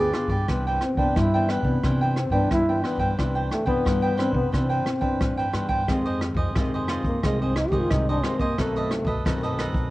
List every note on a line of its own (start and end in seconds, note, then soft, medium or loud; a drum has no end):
0.00 0.45 D3 medium
0.00 0.12 G4 soft
0.00 0.14 G#4 loud
0.00 0.13 B4 medium
0.00 0.13 D5 medium
0.13 0.34 B3 soft
0.13 0.29 F4 soft
0.13 0.34 F4 soft
0.13 0.30 G4 soft
0.13 0.34 G#4 medium
0.13 0.29 B4 soft
0.13 0.28 D5 medium
0.13 cross-stick medium
0.13 closed hi-hat soft
0.27 0.43 G2 medium
0.27 0.47 G4 medium
0.27 0.47 B4 medium
0.27 0.46 D5 medium
0.27 kick medium
0.48 0.77 C2 medium
0.48 1.12 C3 soft
0.48 0.80 E3 medium
0.48 0.80 B3 soft
0.48 0.80 D4 medium
0.48 0.64 E4 soft
0.48 0.65 B4 soft
0.48 0.65 C5 soft
0.48 0.65 G5 soft
0.48 kick medium
0.48 cross-stick medium
0.48 closed hi-hat medium
0.67 0.82 B4 medium
0.67 0.81 C5 medium
0.67 0.82 G5 medium
0.81 1.00 C4 medium
0.81 muted cavaquinho stroke soft
0.81 cross-stick medium
0.81 closed hi-hat soft
0.95 1.11 C2 medium
0.95 1.26 E3 soft
0.95 1.26 B3 medium
0.95 1.27 D4 medium
0.95 1.19 D4 medium
0.95 1.14 B4 medium
0.95 1.15 C5 soft
0.95 1.14 G5 medium
0.95 kick medium
0.95 closed hi-hat soft
1.16 1.80 G2 medium
1.16 1.59 G2 medium
1.16 1.32 E4 soft
1.16 1.52 E4 loud
1.16 1.32 B4 soft
1.16 1.32 C5 soft
1.16 1.32 G5 medium
1.16 kick medium
1.16 cross-stick medium
1.16 closed hi-hat medium
1.33 1.61 E3 medium
1.33 1.61 B3 medium
1.33 1.61 D4 medium
1.33 1.49 B4 medium
1.33 1.50 C5 medium
1.33 1.49 G5 medium
1.49 1.84 B3 medium
1.49 1.82 E4 medium
1.49 1.83 B4 medium
1.49 1.83 G5 medium
1.49 cross-stick medium
1.49 closed hi-hat soft
1.62 1.79 C3 medium
1.62 1.77 E3 medium
1.62 1.77 B3 medium
1.62 1.77 D4 medium
1.62 kick medium
1.62 closed hi-hat soft
1.83 2.47 C3 medium
1.83 2.27 C3 medium
1.83 2.15 E3 medium
1.83 2.15 B3 soft
1.83 2.15 D4 medium
1.83 1.99 E4 soft
1.83 2.00 B4 medium
1.83 2.00 C5 soft
1.83 2.00 G5 medium
1.83 kick medium
1.83 cross-stick medium
1.83 closed hi-hat medium
2.01 2.16 B4 medium
2.01 2.16 C5 medium
2.01 2.16 G5 medium
2.16 2.32 C4 medium
2.16 muted cavaquinho stroke soft
2.16 cross-stick medium
2.16 closed hi-hat soft
2.30 2.46 G2 medium
2.30 2.61 E3 medium
2.30 2.61 B3 medium
2.30 2.61 D4 medium
2.30 2.49 D4 medium
2.30 2.66 B4 medium
2.30 2.66 C5 soft
2.30 2.65 G5 medium
2.30 kick medium
2.50 3.15 G2 medium
2.50 2.80 G2 medium
2.50 2.83 E4 loud
2.50 kick medium
2.50 cross-stick medium
2.50 closed hi-hat medium
2.67 3.13 E3 medium
2.67 3.13 B3 soft
2.67 3.13 D4 medium
2.67 2.83 B4 medium
2.67 2.83 C5 soft
2.67 2.83 G5 medium
2.67 closed hi-hat soft
2.83 3.16 B3 medium
2.83 3.00 E4 soft
2.83 2.99 B4 medium
2.83 2.99 C5 soft
2.83 2.98 G5 soft
2.83 cross-stick medium
2.83 closed hi-hat soft
2.97 3.14 G2 medium
2.97 3.16 B4 medium
2.97 3.17 C5 medium
2.97 3.16 G5 medium
2.97 kick medium
2.97 closed hi-hat soft
3.17 3.47 C2 medium
3.17 3.82 C3 medium
3.17 3.63 E3 medium
3.17 3.63 B3 soft
3.17 3.64 D4 medium
3.17 3.34 E4 soft
3.17 3.34 B4 soft
3.17 3.34 C5 soft
3.17 3.34 G5 soft
3.17 kick medium
3.17 cross-stick medium
3.17 closed hi-hat medium
3.35 3.50 B4 medium
3.35 3.50 C5 medium
3.35 3.50 G5 medium
3.51 3.66 A3 medium
3.51 muted cavaquinho stroke soft
3.51 cross-stick medium
3.51 closed hi-hat soft
3.65 3.81 C2 medium
3.65 4.13 E3 medium
3.65 4.20 B3 medium
3.65 4.13 B3 medium
3.65 4.14 D4 medium
3.65 3.83 B4 medium
3.65 3.84 C5 soft
3.65 3.83 G5 medium
3.65 kick medium
3.85 4.50 G2 soft
3.85 4.29 G2 medium
3.85 4.01 E4 soft
3.85 4.02 B4 soft
3.85 4.01 C5 soft
3.85 4.01 G5 soft
3.85 kick medium
3.85 cross-stick medium
3.85 closed hi-hat medium
4.03 4.17 B4 medium
4.03 4.16 C5 soft
4.03 4.17 G5 medium
4.17 4.39 E3 medium
4.17 4.39 B3 soft
4.17 4.35 C4 medium
4.17 4.39 D4 medium
4.17 4.51 E4 medium
4.17 4.51 B4 medium
4.17 4.51 C5 medium
4.17 4.52 G5 medium
4.17 cross-stick medium
4.17 closed hi-hat soft
4.32 4.49 C3 medium
4.32 4.52 B3 medium
4.32 kick medium
4.52 4.82 C3 medium
4.52 4.85 E3 medium
4.52 5.51 C4 medium
4.52 4.85 D4 medium
4.52 4.68 E4 soft
4.52 4.69 B4 soft
4.52 4.69 C5 soft
4.52 4.68 G5 soft
4.52 kick medium
4.52 cross-stick medium
4.52 closed hi-hat medium
4.70 4.85 B4 medium
4.70 4.85 C5 medium
4.70 4.86 G5 medium
4.70 closed hi-hat soft
4.86 5.17 B2 medium
4.86 muted cavaquinho stroke soft
4.86 cross-stick medium
4.86 closed hi-hat soft
5.01 5.48 E3 medium
5.01 5.48 D4 medium
5.01 5.35 B4 medium
5.01 5.36 C5 soft
5.01 5.35 G5 medium
5.01 kick medium
5.01 closed hi-hat soft
5.20 5.85 G2 soft
5.20 5.51 A2 medium
5.20 kick medium
5.20 cross-stick medium
5.20 closed hi-hat medium
5.38 5.53 B4 medium
5.38 5.52 C5 soft
5.38 5.53 G5 medium
5.38 closed hi-hat soft
5.53 5.84 G2 medium
5.53 5.82 E3 soft
5.53 5.82 B3 soft
5.53 5.83 D4 medium
5.53 5.69 E4 soft
5.53 5.69 B4 soft
5.53 5.69 C5 soft
5.53 5.68 G5 soft
5.53 cross-stick medium
5.53 closed hi-hat soft
5.69 5.86 B4 medium
5.69 5.87 C5 soft
5.69 5.86 G5 medium
5.69 kick medium
5.88 6.52 F2 medium
5.88 6.31 F2 medium
5.88 6.50 D#3 medium
5.88 6.50 G#3 medium
5.88 6.51 C4 medium
5.88 6.04 F4 soft
5.88 6.04 G#4 soft
5.88 6.04 C5 soft
5.88 6.05 D#5 medium
5.88 kick medium
5.88 cross-stick medium
5.88 closed hi-hat medium
6.06 6.20 G#4 soft
6.06 6.21 C5 medium
6.06 6.21 D#5 medium
6.21 muted cavaquinho stroke soft
6.21 cross-stick medium
6.21 closed hi-hat soft
6.35 6.51 F2 medium
6.35 6.54 G#4 medium
6.35 6.54 C5 medium
6.35 6.54 D#5 medium
6.35 kick medium
6.55 6.99 F2 medium
6.55 7.20 C3 medium
6.55 7.18 D#3 medium
6.55 7.18 G#3 medium
6.55 7.18 C4 medium
6.55 6.72 F4 soft
6.55 6.72 G#4 soft
6.55 6.72 C5 soft
6.55 6.72 D#5 medium
6.55 kick medium
6.55 cross-stick medium
6.55 closed hi-hat medium
6.74 6.88 G#4 medium
6.74 6.89 C5 medium
6.74 6.89 D#5 medium
6.88 7.22 F4 medium
6.88 7.22 G#4 medium
6.88 7.22 C5 medium
6.88 7.22 D#5 medium
6.88 cross-stick medium
6.88 closed hi-hat soft
7.02 7.18 F2 medium
7.02 7.25 A#3 medium
7.02 kick medium
7.02 closed hi-hat soft
7.23 7.66 C2 loud
7.23 7.87 F2 medium
7.23 7.55 D#3 medium
7.23 7.43 G#3 medium
7.23 7.55 G#3 medium
7.23 7.55 C4 medium
7.23 7.39 F4 soft
7.23 7.39 G#4 soft
7.23 7.40 C5 medium
7.23 7.40 D#5 medium
7.23 kick medium
7.23 cross-stick medium
7.23 closed hi-hat medium
7.42 7.57 C4 medium
7.42 7.57 G#4 soft
7.42 7.57 C5 medium
7.42 7.57 D#5 medium
7.56 7.70 D#4 medium
7.56 muted cavaquinho stroke soft
7.56 cross-stick medium
7.56 closed hi-hat soft
7.69 7.86 C2 medium
7.69 8.18 D#3 medium
7.69 8.18 G#3 medium
7.69 8.18 C4 medium
7.69 7.82 G4 medium
7.69 8.06 D#5 medium
7.69 kick medium
7.69 closed hi-hat soft
7.73 8.06 G#4 medium
7.73 8.06 C5 medium
7.80 7.92 F4 medium
7.90 8.20 C2 medium
7.90 8.55 C3 medium
7.90 8.10 D#4 medium
7.90 kick medium
7.90 cross-stick medium
7.90 closed hi-hat medium
8.08 8.25 D4 medium
8.08 8.24 G#4 medium
8.08 8.24 C5 medium
8.08 8.24 D#5 medium
8.08 closed hi-hat soft
8.23 8.44 D#3 medium
8.23 8.44 G#3 medium
8.23 8.41 C4 medium
8.23 8.44 C4 medium
8.23 8.40 F4 soft
8.23 8.40 G#4 soft
8.23 8.40 C5 medium
8.23 8.39 D#5 medium
8.23 cross-stick medium
8.23 closed hi-hat soft
8.39 8.61 A#3 medium
8.39 8.57 G#4 medium
8.39 8.57 C5 medium
8.39 8.56 D#5 medium
8.39 kick medium
8.39 closed hi-hat soft
8.58 9.01 B1 loud
8.58 9.22 B2 medium
8.58 9.02 D#3 medium
8.58 9.02 A3 medium
8.58 9.26 A3 medium
8.58 9.02 C4 medium
8.58 8.74 D#4 soft
8.58 8.74 A4 medium
8.58 8.75 B4 soft
8.58 8.75 D#5 medium
8.58 kick medium
8.58 cross-stick medium
8.58 closed hi-hat medium
8.76 8.90 A4 medium
8.76 8.91 B4 medium
8.76 8.91 D#5 medium
8.76 closed hi-hat soft
8.91 muted cavaquinho stroke soft
8.91 cross-stick medium
8.91 closed hi-hat medium
9.05 9.21 B1 medium
9.05 9.24 A4 medium
9.05 9.24 B4 medium
9.05 9.23 D#5 medium
9.05 kick medium
9.25 9.69 B1 medium
9.25 9.90 F#2 medium
9.25 9.88 D#3 medium
9.25 9.88 A3 medium
9.25 9.88 C4 medium
9.25 9.41 D#4 soft
9.25 9.41 A4 soft
9.25 9.42 B4 soft
9.25 9.42 D#5 medium
9.25 kick medium
9.25 cross-stick medium
9.25 closed hi-hat medium
9.43 9.58 A4 medium
9.43 9.58 B4 medium
9.43 9.58 D#5 medium
9.43 closed hi-hat soft
9.58 9.90 D#4 medium
9.58 9.90 A4 medium
9.58 9.90 B4 medium
9.58 9.90 D#5 medium
9.58 cross-stick medium
9.58 closed hi-hat soft
9.72 9.88 B1 medium
9.72 kick medium
9.72 closed hi-hat soft